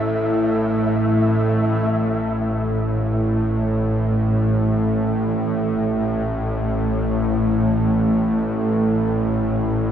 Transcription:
Already playing: synth drone A1 A2, ambient pad A3 E4 A4, synth texture E5
1.90 synth drone A1 A2

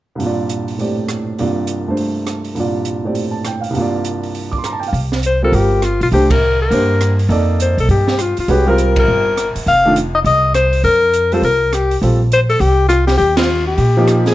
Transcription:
0.15 grand piano C2 G2
0.20 grand piano A#2 F4, open hi-hat
0.26 grand piano D5
0.49 closed hi-hat
0.68 open hi-hat
0.78 grand piano A2 C4 G4 D5, open hi-hat
1.08 cross-stick, closed hi-hat
1.39 grand piano C2 G2 A#3 F4 D5, open hi-hat
1.67 closed hi-hat
1.88 grand piano G2 A3 D4 C5
1.97 open hi-hat
2.27 cross-stick, closed hi-hat
2.44 open hi-hat
2.55 grand piano C2 G2 A#2, open hi-hat
2.59 grand piano F4 D5
2.85 closed hi-hat
3.04 grand piano A2 C4 G4 D5
3.15 open hi-hat
3.31 grand piano A5
3.45 grand piano G5, cross-stick, closed hi-hat
3.61 grand piano F5, open hi-hat
3.70 grand piano C2 G2
3.75 grand piano A#3 F4, open hi-hat
3.81 grand piano D5
4.05 closed hi-hat
4.23 open hi-hat
4.35 open hi-hat
4.52 grand piano D6, kick
4.58 grand piano C6
4.64 grand piano A#5, cross-stick, closed hi-hat
4.72 grand piano A5
4.80 grand piano G5, open hi-hat
4.88 grand piano F5
4.93 upright bass C2, open hi-hat
5.12 snare
5.23 alto saxophone C5, closed hi-hat
5.42 grand piano G3 C4 F4 A#4, alto saxophone A4
5.52 upright bass G1, alto saxophone G4, open hi-hat
5.82 alto saxophone F4, cross-stick, closed hi-hat
6.01 upright bass B1, alto saxophone F4, open hi-hat
6.12 upright bass C2, grand piano A3 D4 G4 C5, alto saxophone G4, open hi-hat
6.30 alto saxophone A#4, kick, ride
6.62 alto saxophone A#4
6.71 upright bass G2, grand piano A#3 D4 G4 C5, open hi-hat
7.01 cross-stick, closed hi-hat
7.19 open hi-hat
7.29 upright bass F2, grand piano A#3 D#4 A4 D5, open hi-hat
7.60 alto saxophone C5, closed hi-hat
7.78 upright bass B1, alto saxophone A4, open hi-hat
7.89 upright bass G2, alto saxophone G4, open hi-hat
8.08 snare
8.19 alto saxophone F4, cross-stick, closed hi-hat
8.37 alto saxophone F4, muted upright bass stroke, open hi-hat
8.48 upright bass C2, grand piano G#3 C#4 F#4 B4, alto saxophone G4, open hi-hat
8.66 grand piano G3 C4 F4 A#4, alto saxophone A#4
8.78 closed hi-hat
8.96 alto saxophone A#4, kick, ride
9.08 upright bass G1
9.37 cross-stick, closed hi-hat
9.55 muted upright bass stroke, open hi-hat
9.66 upright bass F1, alto saxophone F5, open hi-hat
9.85 grand piano D#3 A3 D4 F4
9.96 closed hi-hat
10.15 alto saxophone D#5
10.24 upright bass C2, alto saxophone D#5, open hi-hat
10.54 alto saxophone C5, cross-stick, closed hi-hat
10.73 open hi-hat
10.84 upright bass F2, alto saxophone A#4, open hi-hat
11.13 closed hi-hat
11.32 grand piano G3 C4 F4 A4, alto saxophone C5, open hi-hat
11.42 upright bass C2, alto saxophone A#4, open hi-hat
11.73 alto saxophone G4, cross-stick, closed hi-hat
11.91 open hi-hat
12.02 upright bass A#1, grand piano G3 C4 F4 A4, open hi-hat
12.32 alto saxophone C5, closed hi-hat
12.50 alto saxophone A4, open hi-hat
12.60 upright bass C2, alto saxophone G4, open hi-hat
12.89 alto saxophone F4, cross-stick, closed hi-hat
13.07 alto saxophone G4, snare, open hi-hat
13.18 upright bass D#2, alto saxophone G4, open hi-hat
13.37 alto saxophone F4, snare, ride
13.67 alto saxophone G4
13.78 upright bass A#2, open hi-hat
13.97 grand piano F3 A#3 D#4 G4
14.07 cross-stick, closed hi-hat
14.26 alto saxophone G#4, snare, open hi-hat

